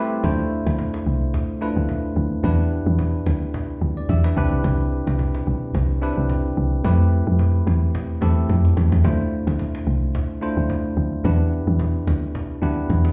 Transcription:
Already playing: tine electric piano G3 A3 C4 E4 G4 B4 C5 C6
0.23 log drum bass D2, tine electric piano A3 D4 E4 F4 C5, cajon bass
0.38 cajon slap
0.51 cajon slap
0.67 log drum bass D2, cajon slap
0.79 cajon bass
0.94 cajon slap
1.06 log drum bass C2, cajon slap
1.21 cajon slap
1.34 log drum bass D2, cajon bass
1.49 cajon slap
1.61 tine electric piano A3 D4 E4 F4 B4, cajon slap
1.76 log drum bass D2, cajon slap
1.89 cajon bass
2.04 cajon slap
2.16 log drum bass D2, cajon slap
2.32 cajon slap
2.43 log drum bass E2, tine electric piano B3 D4 E4 G4 B4, cajon bass
2.58 cajon slap
2.71 cajon slap
2.86 log drum bass E2, cajon slap
2.99 cajon bass
3.14 cajon slap
3.26 log drum bass D2, cajon slap
3.41 cajon slap
3.54 cajon bass
3.69 cajon slap
3.81 log drum bass D2, cajon slap
3.97 tine electric piano D5, cajon slap
4.09 log drum bass E2, tine electric piano G4 E5, cajon bass
4.24 tine electric piano D4 B4, cajon slap
4.36 log drum bass C2, tine electric piano C4 D4 E4 G4 B4, cajon slap
4.52 log drum bass C2, cajon slap
4.64 log drum bass C2, cajon bass
4.79 cajon slap
4.92 cajon slap
5.07 log drum bass C2, cajon slap
5.19 cajon bass
5.35 cajon slap
5.47 log drum bass B1, cajon slap
5.62 cajon slap
5.75 log drum bass C2, cajon bass
5.89 cajon slap
6.02 tine electric piano C4 D4 E4 G4 B4, cajon slap
6.17 log drum bass C2, cajon slap
6.29 cajon bass
6.45 cajon slap
6.57 log drum bass C2, cajon slap
6.72 cajon slap
6.84 log drum bass F2, tine electric piano G3 C4 E4 G4 B4, cajon bass
6.91 tine electric piano A3
6.99 cajon slap
7.12 cajon slap
7.27 log drum bass F2, cajon slap
7.39 cajon bass
7.55 cajon slap
7.67 log drum bass E2, cajon slap
7.82 cajon slap
7.95 cajon bass
8.10 cajon slap
8.21 log drum bass E2, tine electric piano A3 C4 E4 G4 A4, cajon slap
8.37 cajon slap
8.49 log drum bass F2, cajon bass, cajon slap
8.65 cajon slap
8.77 log drum bass E2, cajon slap
8.92 log drum bass E2, cajon slap
9.04 log drum bass D2, tine electric piano A3 D4 E4 F4 C5, cajon bass
9.19 cajon slap
9.32 cajon slap
9.47 log drum bass D2, cajon slap
9.59 cajon bass
9.75 cajon slap
9.87 log drum bass C2, cajon slap
10.02 cajon slap
10.15 log drum bass D2, cajon bass
10.30 cajon slap
10.41 tine electric piano A3 D4 E4 F4 C5, cajon slap
10.57 log drum bass D2, cajon slap
10.70 cajon bass
10.85 cajon slap
10.97 log drum bass D2, cajon slap
11.13 cajon slap
11.24 log drum bass E2, tine electric piano B3 D4 E4 G4 B4, cajon bass
11.52 cajon slap
11.67 log drum bass E2, cajon slap
11.79 cajon bass
11.95 cajon slap
12.07 log drum bass D2, cajon slap
12.23 cajon slap
12.35 cajon bass
12.50 cajon slap
12.62 log drum bass D2, tine electric piano B3 D4 E4 G4 B4
12.78 cajon slap
12.90 log drum bass E2, cajon bass
13.05 cajon slap

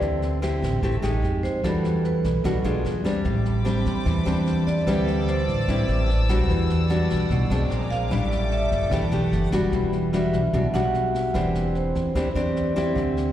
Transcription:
Already playing: nylon-string guitar C4 E4 G4
0.02 upright bass D2, nylon-string guitar D3, kick, snare
0.22 snare
0.42 nylon-string guitar C4 E4 G4, cross-stick, snare
0.62 upright bass A1, kick, snare
0.83 upright bass A1, nylon-string guitar A3 C4 E4 G4, kick, snare
1.02 upright bass A1, nylon-string guitar G#3 D#4 G4, cross-stick, snare
1.23 upright bass F2, snare
1.43 vibraphone C5, kick, snare
1.64 upright bass E2, nylon-string guitar E3 G3 D4 F#4, vibraphone A4, kick, cross-stick, snare
1.84 snare
2.05 vibraphone B4, snare
2.24 upright bass B1, kick, snare
2.44 upright bass B1, nylon-string guitar B2 G3 D4 F#4, kick, cross-stick, snare
2.64 upright bass B1, nylon-string guitar G#3 D4 F4, snare
2.85 upright bass E2, snare
3.05 nylon-string guitar G3 C4 D4, kick, cross-stick, snare
3.25 upright bass A1, nylon-string guitar A2, string section C5 A5 B5 D6, kick, snare
3.45 snare
3.65 nylon-string guitar G3 C4 D4, cross-stick, snare
3.86 upright bass E2, kick, snare
4.06 upright bass E2, nylon-string guitar E3, kick, snare
4.25 upright bass E2, nylon-string guitar G3 C4 D4, cross-stick, snare
4.46 snare
4.67 vibraphone D5, kick, snare
4.87 upright bass D2, nylon-string guitar D3 G3 C4 E4, vibraphone B4, string section D5 D6 E6, kick, cross-stick, snare
5.08 snare
5.28 vibraphone C5, snare
5.48 upright bass A1, kick, snare
5.68 upright bass A1, nylon-string guitar A2 G3 C4 E4, kick, cross-stick, snare
5.89 upright bass A1, snare
6.09 snare
6.29 nylon-string guitar G3 D4 F#4, kick, cross-stick, snare
6.49 upright bass E2, nylon-string guitar E3, string section D5 F#5, kick, snare
6.70 snare
6.90 nylon-string guitar G3 D4 F#4, cross-stick, snare
7.10 upright bass B1, kick, snare
7.30 upright bass B1, nylon-string guitar B2, kick, snare
7.50 upright bass B1, nylon-string guitar G#3 C4 D4, cross-stick, snare
7.70 upright bass A#1, string section C5 G#5 A#5 D6, snare
7.91 vibraphone F5, kick, snare
8.11 upright bass A1, nylon-string guitar A2 G3 D4 E4, string section A4 E5 G5, vibraphone D5, kick, cross-stick, snare
8.32 snare
8.52 vibraphone E5, snare
8.72 upright bass F#1, kick, snare
8.91 upright bass E1, nylon-string guitar E3 A3 D4 G4, string section F#5, kick, cross-stick, snare
9.11 upright bass B1, nylon-string guitar A3 D4 G4, snare
9.32 upright bass F#1, snare
9.52 upright bass E1, nylon-string guitar G3 D4 F#4, kick, cross-stick, snare
9.72 upright bass E1, nylon-string guitar E3, kick, snare
9.93 snare
10.13 nylon-string guitar G3 D4 F#4, vibraphone E5, cross-stick, snare
10.33 upright bass B1, kick, snare
10.53 upright bass B1, nylon-string guitar B2 G3 D4 F#4, kick, snare
10.74 upright bass B1, nylon-string guitar G3 D4 F#4, vibraphone F#5, cross-stick, snare
10.94 snare
11.14 kick, snare
11.34 upright bass E1, nylon-string guitar E3 C4 D4 G4, kick, cross-stick, snare
11.55 snare
11.75 vibraphone C5, snare
11.95 upright bass E2, kick, snare
12.15 upright bass E2, nylon-string guitar E3 C4 D4 G4, kick, cross-stick, snare
12.35 upright bass E2, nylon-string guitar C4 D4 G4, vibraphone D5, snare
12.56 snare
12.76 nylon-string guitar C4 E4 G4, kick, cross-stick, snare
12.95 upright bass D2, nylon-string guitar D3, kick, snare
13.17 snare

